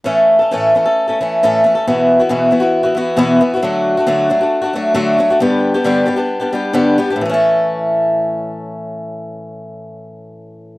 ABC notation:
X:1
M:4/4
L:1/16
Q:1/4=134
K:Amix
V:1 name="Steel-string acoustic guitar"
[A,,E,A,CA]3 [A,CA] [A,,E,A,CA]2 [E,A,CA] [A,CA]2 [A,CA] [E,A,CA]2 [A,,E,A,CA]2 [E,A,CA] [A,CA] | [E,,B,,E,B,EF]3 [E,B,EF] [E,,B,,E,B,EF]2 [E,B,EF] [E,B,EF]2 [E,B,EF] [E,B,EF]2 [E,,B,,E,B,EF]2 [E,B,EF] [E,B,EF] | [D,F,A,DF]3 [A,DF] [D,F,A,DF]2 [F,A,DF] [A,DF]2 [A,DF] [F,A,DF]2 [D,F,A,DF]2 [F,A,DF] [A,DF] | [G,,D,G,B,DG]3 [G,B,DG] [G,,D,G,B,DG]2 [G,B,DG] [G,B,DG]2 [G,B,DG] [G,B,DG]2 [G,,D,G,B,DG]2 [G,B,DG] [G,B,DG] |
[A,,E,A,CA]16- | [A,,E,A,CA]16 |]